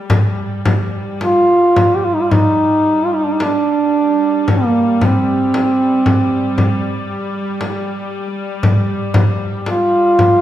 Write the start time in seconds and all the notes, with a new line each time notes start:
0.09 G3, frame drum
0.65 frame drum
1.21 F4, frame drum
1.76 frame drum
1.96 G4
2.05 F4
2.14 D#4
2.22 F4
2.31 D#4, frame drum
3.05 F4
3.15 D#4
3.25 D4
3.33 D#4
3.40 D4, frame drum
4.48 A#3, frame drum
5.01 C4, frame drum
5.54 frame drum
6.06 frame drum
6.58 frame drum
7.61 frame drum
8.63 frame drum
9.14 frame drum
9.66 F4, frame drum
10.19 frame drum